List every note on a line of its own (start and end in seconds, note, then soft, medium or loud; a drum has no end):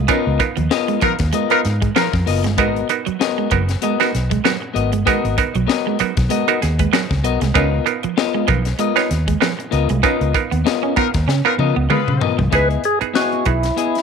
0.08 0.30 B3 loud
0.08 0.38 B3 medium
0.08 0.21 C#4 medium
0.08 0.30 D#4 loud
0.08 0.30 F4 loud
0.08 0.38 F4 medium
0.08 0.31 A#4 loud
0.08 0.38 A#4 loud
0.08 0.39 D#5 medium
0.08 kick loud
0.08 closed hi-hat medium
0.27 0.37 C#2 loud
0.40 0.82 B3 medium
0.40 0.82 D#4 medium
0.40 0.82 F4 medium
0.40 0.82 A#4 medium
0.40 muted clean electric guitar stroke soft
0.40 kick loud
0.40 closed hi-hat medium
0.57 0.68 D#2 loud
0.57 0.66 F3 medium
0.57 muted clean electric guitar stroke soft
0.57 closed hi-hat soft
0.70 1.00 B3 medium
0.70 1.00 F4 medium
0.70 1.00 A#4 medium
0.70 1.00 D#5 medium
0.70 muted clean electric guitar stroke soft
0.70 snare loud
0.88 0.98 G#3 medium
0.88 closed hi-hat soft
1.01 1.14 F3 medium
1.01 1.33 B3 medium
1.01 1.13 D#4 medium
1.01 1.33 D#4 medium
1.01 1.13 F4 medium
1.01 1.33 F4 medium
1.01 1.13 A#4 loud
1.01 1.33 A#4 medium
1.01 muted clean electric guitar stroke soft
1.01 muted fingered electric bass stroke soft
1.01 kick loud
1.01 closed hi-hat medium
1.19 1.30 D#2 loud
1.19 muted clean electric guitar stroke medium
1.19 kick loud
1.19 snare soft
1.19 closed hi-hat medium
1.33 1.45 G#3 medium
1.33 1.62 B3 medium
1.33 1.62 F4 medium
1.33 1.63 A#4 medium
1.33 1.63 D#5 medium
1.33 closed hi-hat medium
1.50 1.81 B3 loud
1.50 1.59 D#4 medium
1.50 1.81 D#4 loud
1.50 1.59 F4 medium
1.50 1.82 F4 loud
1.50 1.59 A#4 loud
1.50 1.82 A#4 loud
1.50 muted clean electric guitar stroke soft
1.50 closed hi-hat soft
1.64 1.88 G#2 medium
1.64 muted clean electric guitar stroke soft
1.64 snare soft
1.64 closed hi-hat medium
1.81 1.91 G#3 medium
1.81 muted clean electric guitar stroke medium
1.81 kick loud
1.81 closed hi-hat medium
1.95 2.08 F3 medium
1.95 2.07 B3 medium
1.95 2.15 D#4 medium
1.95 2.07 D#4 medium
1.95 2.15 F4 medium
1.95 2.07 F4 medium
1.95 2.15 A#4 medium
1.95 2.07 A#4 loud
1.95 snare loud
2.12 2.23 F2 medium
2.12 2.20 F4 soft
2.12 2.20 A#4 soft
2.12 muted clean electric guitar stroke soft
2.12 kick medium
2.12 snare soft
2.26 2.45 F#1 medium
2.26 2.45 B3 medium
2.26 2.44 F4 medium
2.26 2.44 A#4 medium
2.26 2.43 D#5 medium
2.26 open hi-hat medium
2.44 2.58 G1 medium
2.44 2.54 G#3 medium
2.44 muted clean electric guitar stroke soft
2.44 snare soft
2.44 closed hi-hat medium
2.57 2.81 G#1 loud
2.57 2.70 G#3 medium
2.57 2.86 B3 medium
2.57 2.80 B3 loud
2.57 2.80 D#4 loud
2.57 2.87 F#4 medium
2.57 2.80 F#4 loud
2.57 2.87 A#4 medium
2.57 2.80 A#4 loud
2.57 2.87 D#5 medium
2.57 kick loud
2.57 closed hi-hat medium
2.76 closed hi-hat soft
2.89 3.31 B3 medium
2.89 3.31 D#4 medium
2.89 3.31 F#4 medium
2.89 3.31 A#4 medium
2.89 muted clean electric guitar stroke soft
2.89 closed hi-hat medium
3.06 3.16 F#3 medium
3.06 muted clean electric guitar stroke soft
3.06 muted fingered electric bass stroke soft
3.06 closed hi-hat soft
3.19 3.49 B3 medium
3.19 3.49 F#4 medium
3.19 3.49 A#4 medium
3.19 3.49 D#5 medium
3.19 muted clean electric guitar stroke soft
3.19 snare loud
3.38 3.47 G#3 medium
3.51 3.74 F#1 medium
3.51 3.64 F#3 medium
3.51 3.82 B3 medium
3.51 3.82 D#4 medium
3.51 3.82 F#4 medium
3.51 3.82 A#4 medium
3.51 kick loud
3.51 closed hi-hat medium
3.68 muted clean electric guitar stroke soft
3.68 snare soft
3.68 closed hi-hat medium
3.82 3.95 G#3 medium
3.82 4.11 B3 medium
3.82 4.11 F#4 medium
3.82 4.11 A#4 medium
3.82 4.11 D#5 medium
3.82 closed hi-hat medium
4.00 4.30 B3 loud
4.00 4.30 D#4 loud
4.00 4.31 F#4 loud
4.00 4.31 A#4 loud
4.00 muted clean electric guitar stroke soft
4.00 snare soft
4.00 closed hi-hat soft
4.12 4.37 B1 medium
4.12 muted clean electric guitar stroke soft
4.12 snare soft
4.12 closed hi-hat medium
4.30 4.41 G#3 medium
4.30 muted clean electric guitar stroke medium
4.30 kick loud
4.30 closed hi-hat medium
4.44 4.57 F#3 medium
4.44 4.56 B3 medium
4.44 4.56 D#4 medium
4.44 4.56 F#4 medium
4.44 4.56 A#4 loud
4.44 snare loud
4.60 4.68 F#4 soft
4.60 4.69 A#4 soft
4.60 muted clean electric guitar stroke soft
4.74 4.93 G#1 medium
4.74 4.93 B3 medium
4.74 4.92 F#4 medium
4.74 4.91 A#4 medium
4.74 4.91 D#5 medium
4.74 closed hi-hat medium
4.92 5.03 G1 loud
4.92 5.03 G#3 medium
4.92 muted clean electric guitar stroke soft
4.92 closed hi-hat medium
5.05 5.19 G#3 medium
5.05 5.35 B3 medium
5.05 5.28 B3 loud
5.05 5.28 D#4 loud
5.05 5.35 F#4 medium
5.05 5.29 F#4 loud
5.05 5.35 A#4 medium
5.05 5.29 A#4 loud
5.05 5.35 D#5 medium
5.05 kick loud
5.05 closed hi-hat medium
5.25 5.34 G#1 loud
5.25 closed hi-hat soft
5.38 5.80 B3 medium
5.38 5.80 D#4 medium
5.38 5.80 F#4 medium
5.38 5.80 A#4 loud
5.38 muted clean electric guitar stroke soft
5.38 kick loud
5.38 closed hi-hat medium
5.54 5.65 B1 medium
5.54 5.65 F#3 medium
5.54 muted clean electric guitar stroke soft
5.54 closed hi-hat soft
5.67 5.97 B3 medium
5.67 5.97 F#4 medium
5.67 5.97 A#4 medium
5.67 5.97 D#5 medium
5.67 muted clean electric guitar stroke soft
5.67 snare loud
5.87 5.96 G#3 medium
5.99 6.12 F#3 medium
5.99 6.30 B3 medium
5.99 6.31 D#4 medium
5.99 6.31 F#4 medium
5.99 6.31 A#4 medium
5.99 muted clean electric guitar stroke soft
5.99 muted fingered electric bass stroke soft
5.99 closed hi-hat medium
6.17 6.28 B1 loud
6.17 muted clean electric guitar stroke soft
6.17 kick loud
6.17 snare soft
6.17 closed hi-hat medium
6.29 6.43 G#3 medium
6.29 6.59 B3 medium
6.29 6.59 F#4 medium
6.29 6.60 A#4 medium
6.29 6.60 D#5 loud
6.29 closed hi-hat medium
6.48 6.79 B3 loud
6.48 6.79 D#4 loud
6.48 6.79 F#4 loud
6.48 6.79 A#4 loud
6.48 muted clean electric guitar stroke soft
6.48 closed hi-hat soft
6.61 6.86 D#2 medium
6.61 6.78 G#4 medium
6.61 muted clean electric guitar stroke soft
6.61 snare soft
6.61 closed hi-hat medium
6.79 6.89 G#3 medium
6.79 6.92 B4 medium
6.79 muted clean electric guitar stroke medium
6.79 kick loud
6.79 closed hi-hat medium
6.93 7.05 F#3 medium
6.93 7.04 B3 medium
6.93 7.04 D#4 medium
6.93 7.05 F#4 medium
6.93 7.05 A#4 loud
6.93 7.22 B4 medium
6.93 snare loud
7.10 7.24 C#2 medium
7.10 7.17 F#4 soft
7.10 7.17 A#4 soft
7.10 muted clean electric guitar stroke soft
7.10 kick loud
7.10 snare soft
7.24 7.37 B1 loud
7.24 7.42 B3 medium
7.24 7.41 F#4 medium
7.24 7.40 A#4 loud
7.24 7.53 D#5 medium
7.24 7.40 D#5 medium
7.24 closed hi-hat medium
7.41 7.52 C2 medium
7.41 7.51 G#3 medium
7.41 muted clean electric guitar stroke soft
7.41 snare soft
7.41 closed hi-hat medium
7.54 7.78 C#2 loud
7.54 7.76 B3 loud
7.54 7.84 B3 medium
7.54 7.67 C#4 medium
7.54 7.77 D#4 medium
7.54 7.84 F4 medium
7.54 7.77 F4 loud
7.54 7.77 A#4 loud
7.54 7.84 A#4 medium
7.54 7.84 D#5 medium
7.54 kick loud
7.54 closed hi-hat medium
7.86 8.28 B3 medium
7.86 8.28 D#4 medium
7.86 8.28 F4 medium
7.86 8.28 A#4 medium
7.86 muted clean electric guitar stroke soft
7.86 closed hi-hat medium
8.03 8.14 F3 medium
8.03 muted clean electric guitar stroke medium
8.03 muted fingered electric bass stroke soft
8.03 closed hi-hat soft
8.17 8.46 B3 medium
8.17 8.46 F4 medium
8.17 8.47 A#4 medium
8.17 8.47 D#5 medium
8.17 muted clean electric guitar stroke soft
8.17 snare loud
8.34 8.44 G#3 medium
8.48 8.72 B1 medium
8.48 8.61 F3 medium
8.48 8.79 B3 medium
8.48 8.79 D#4 medium
8.48 8.79 F4 medium
8.48 8.79 A#4 medium
8.48 kick loud
8.48 closed hi-hat medium
8.65 muted clean electric guitar stroke soft
8.65 snare soft
8.65 closed hi-hat medium
8.79 8.91 G#3 medium
8.79 9.08 B3 medium
8.79 9.08 F4 medium
8.79 9.09 A#4 medium
8.79 9.09 D#5 medium
8.79 closed hi-hat medium
8.96 9.27 B3 loud
8.96 9.27 D#4 loud
8.96 9.27 F4 loud
8.96 9.27 C#5 loud
8.96 muted clean electric guitar stroke soft
8.96 snare soft
8.96 closed hi-hat soft
9.10 9.34 D#2 medium
9.10 muted clean electric guitar stroke soft
9.10 snare soft
9.10 closed hi-hat medium
9.27 9.37 G#3 medium
9.27 muted clean electric guitar stroke soft
9.27 kick medium
9.27 closed hi-hat medium
9.41 9.54 F3 medium
9.41 9.53 B3 medium
9.41 9.53 D#4 medium
9.41 9.53 F4 medium
9.41 9.53 A#4 medium
9.41 snare loud
9.58 9.65 F4 soft
9.58 9.66 A#4 soft
9.58 muted clean electric guitar stroke soft
9.58 closed hi-hat soft
9.71 9.86 C#2 loud
9.71 9.90 B3 medium
9.71 9.89 F4 loud
9.71 9.88 A#4 loud
9.71 9.88 D#5 medium
9.71 closed hi-hat medium
9.89 10.01 C2 loud
9.89 10.00 G#3 medium
9.89 muted clean electric guitar stroke soft
9.89 closed hi-hat soft
10.03 10.32 B3 medium
10.03 10.25 B3 loud
10.03 10.16 C#4 medium
10.03 10.25 D#4 loud
10.03 10.32 F4 medium
10.03 10.25 F4 loud
10.03 10.33 A#4 medium
10.03 10.26 A#4 loud
10.03 10.33 D#5 medium
10.03 kick loud
10.03 closed hi-hat medium
10.21 10.31 C#2 loud
10.21 closed hi-hat soft
10.34 10.77 B3 medium
10.34 10.77 D#4 medium
10.34 10.77 F4 medium
10.34 10.77 A#4 medium
10.34 muted clean electric guitar stroke soft
10.34 kick medium
10.34 closed hi-hat medium
10.51 10.62 D#2 medium
10.51 10.61 B3 medium
10.51 muted clean electric guitar stroke soft
10.51 closed hi-hat soft
10.64 10.94 B3 medium
10.64 10.95 F4 medium
10.64 10.95 A#4 medium
10.64 10.95 D#5 medium
10.64 muted clean electric guitar stroke soft
10.64 snare loud
10.83 10.93 C#4 loud
10.96 11.28 B3 medium
10.96 11.09 B3 medium
10.96 11.08 D#4 medium
10.96 11.28 D#4 medium
10.96 11.08 F4 medium
10.96 11.28 F4 medium
10.96 11.07 A#4 loud
10.96 11.28 A#4 medium
10.96 muted fingered electric bass stroke soft
10.96 kick loud
10.96 closed hi-hat medium
11.14 11.25 D#2 medium
11.14 muted clean electric guitar stroke soft
11.14 kick loud
11.14 snare soft
11.14 closed hi-hat medium
11.27 11.41 C#3 medium
11.27 11.40 C#4 medium
11.27 snare medium
11.45 11.76 B3 loud
11.45 11.76 D#4 medium
11.45 11.54 D#4 medium
11.45 11.54 F4 medium
11.45 11.76 F4 medium
11.45 11.54 A#4 loud
11.45 11.76 A#4 loud
11.45 muted clean electric guitar stroke soft
11.58 11.72 C#3 loud
11.58 11.77 B3 medium
11.58 11.76 F4 loud
11.58 11.76 A#4 loud
11.58 11.75 D#5 loud
11.58 high tom medium
11.76 11.87 C#2 medium
11.76 11.86 B3 medium
11.76 muted clean electric guitar stroke medium
11.90 12.03 G#3 medium
11.90 12.02 B3 medium
11.90 12.02 D#4 medium
11.90 12.32 F4 medium
11.90 12.02 F4 medium
11.90 12.32 G#4 medium
11.90 12.02 A#4 medium
11.90 12.32 B4 medium
11.90 mid tom loud
12.08 12.18 C#3 medium
12.08 12.15 F4 soft
12.08 12.15 A#4 soft
12.08 muted clean electric guitar stroke soft
12.08 mid tom medium
12.21 12.40 B3 medium
12.21 12.38 F4 medium
12.21 12.37 A#4 medium
12.21 12.37 D#5 loud
12.21 floor tom loud
12.38 12.49 C2 loud
12.38 12.48 F3 medium
12.38 muted clean electric guitar stroke soft
12.38 floor tom medium
12.51 12.76 C#2 loud
12.51 12.81 B3 medium
12.51 12.83 B3 medium
12.51 12.84 D#4 medium
12.51 12.81 E4 medium
12.51 12.84 E4 medium
12.51 12.81 G#4 medium
12.51 12.84 G#4 loud
12.51 12.82 D#5 medium
12.51 kick loud
12.51 closed hi-hat medium
12.55 12.69 B4 loud
12.71 closed hi-hat soft
12.84 12.99 G#4 loud
12.84 closed hi-hat medium
13.00 13.32 B3 medium
13.00 13.32 D#4 medium
13.00 13.32 E4 medium
13.00 13.32 G#4 medium
13.00 muted clean electric guitar stroke soft
13.00 muted fingered electric bass stroke soft
13.00 closed hi-hat soft
13.14 13.43 B3 medium
13.14 13.43 E4 medium
13.14 13.47 F#4 medium
13.14 13.44 G#4 medium
13.14 13.44 D#5 medium
13.14 snare loud
13.32 closed hi-hat soft
13.45 13.69 B1 medium
13.45 13.68 B3 medium
13.45 13.68 D#4 medium
13.45 13.68 E4 medium
13.45 14.02 E4 medium
13.45 13.68 G#4 medium
13.45 muted clean electric guitar stroke soft
13.45 kick loud
13.45 closed hi-hat medium
13.63 muted clean electric guitar stroke soft
13.63 snare soft
13.63 closed hi-hat medium
13.76 13.95 B3 medium
13.76 13.86 E4 soft
13.76 13.96 E4 medium
13.76 13.86 G#4 soft
13.76 13.96 G#4 medium
13.76 13.96 D#5 medium
13.76 closed hi-hat medium
13.95 snare soft
13.95 closed hi-hat soft